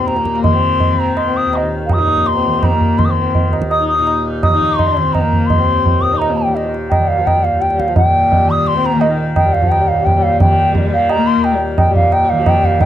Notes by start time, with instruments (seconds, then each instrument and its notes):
Already playing: tanpura D#2 A#2 D#3, sarangi C4
0.07 bansuri A#5, tabla te
0.16 sarangi A#3, tabla te
0.25 tabla ke
0.35 tabla te
0.43 tanpura D#3, bansuri C6, tabla tin, tabla ge
0.53 sarangi C4
0.80 tabla tin, tabla ge
0.93 tanpura D#3
0.99 bansuri A#5
1.17 bansuri C6, tabla na
1.27 sarangi C4
1.36 bansuri D#6
1.46 tanpura D#2
1.53 bansuri D#5, tabla na
1.63 sarangi D#3
1.85 bansuri F5
1.89 bansuri D#6, tabla na, tabla ge
1.94 tanpura A#2, sarangi F4
1.99 sarangi D#4
2.08 tabla te
2.17 tabla ge
2.26 bansuri C6, tabla na
2.35 sarangi C4
2.47 tanpura D#3
2.63 bansuri A#5, tabla na, tabla ge
2.72 sarangi A#3
2.81 tabla ge
2.97 tanpura D#3, bansuri C6, tabla tin, tabla ge
3.05 sarangi C4, bansuri D#6
3.10 bansuri C6
3.19 sarangi C4
3.35 tabla tin, tabla ge
3.48 tanpura D#2
3.53 tabla na
3.62 tabla ke
3.70 bansuri D#6, tabla na
3.80 sarangi D#4
3.88 bansuri D#6
3.97 tanpura A#2, sarangi D#4
4.07 tabla na
4.42 bansuri D#6, tabla na, tabla ge
4.49 tanpura D#3, sarangi D#4
4.61 tabla ge
4.78 bansuri C6, tabla na, tabla ge
4.88 sarangi C4
4.97 tanpura D#3, tabla te
5.13 bansuri A#5, tabla na, tabla ge
5.23 sarangi A#3
5.33 tabla ge
5.46 tanpura D#2, bansuri C6
5.50 tabla tin, tabla ge
5.58 sarangi C4
5.86 tabla tin, tabla ge
5.98 tanpura A#2, bansuri D#6
6.13 sarangi D#4
6.18 bansuri A#5, tabla na
6.31 sarangi A#3
6.36 bansuri G5
6.46 tanpura D#3, sarangi G3
6.55 bansuri D#5, tabla te
6.65 sarangi D#3
6.74 tabla te
6.89 bansuri G5, tabla na, tabla ge
6.95 tanpura D#3
7.00 sarangi G3
7.07 bansuri F5
7.19 sarangi F3
7.26 bansuri G5, tabla na, tabla ge
7.37 sarangi G3
7.43 tanpura D#2, bansuri F5, tabla te
7.61 bansuri G5, tabla te
7.70 sarangi G3, tabla te
7.79 bansuri F5, tabla ke
7.88 sarangi F3, tabla te
7.96 tanpura A#2, bansuri G5, tabla tin, tabla ge
8.06 sarangi G3
8.32 tabla tin, tabla ge
8.46 tanpura D#3
8.50 bansuri D#6
8.66 bansuri C6, tabla te
8.75 sarangi C4
8.84 bansuri A#5, tabla te
8.93 tanpura D#3, sarangi A#3
9.00 bansuri D#5, tabla na
9.09 sarangi D#3
9.36 bansuri G5, tabla na, tabla ge
9.43 tanpura D#2, sarangi G3
9.53 bansuri F5, tabla te
9.62 sarangi F3, tabla ge
9.69 bansuri G5, tabla na
9.79 sarangi G3
9.88 tanpura A#2, bansuri F5
10.05 bansuri G5, tabla tin, tabla ge
10.16 sarangi G3
10.23 bansuri F5
10.40 tanpura D#3, bansuri G5, tabla tin, tabla ge
10.49 sarangi G3
10.75 tabla tin, tabla ge
10.89 tanpura D#3
10.93 bansuri F5
11.09 bansuri A#5, tabla na
11.18 sarangi A#3
11.26 bansuri C6
11.37 tanpura D#2
11.44 bansuri G5, tabla na
11.53 sarangi G3
11.78 bansuri G5, tabla na, tabla ge
11.85 tanpura A#2, sarangi G3
11.95 bansuri F5, tabla ge
12.12 bansuri G5, tabla na
12.22 sarangi G3
12.29 tanpura D#3, bansuri F5
12.40 sarangi F3
12.46 bansuri G5, tabla na, tabla ge
12.55 sarangi G3
12.64 bansuri F5, tabla ge
12.78 tanpura D#3, bansuri G5, tabla tin, tabla ge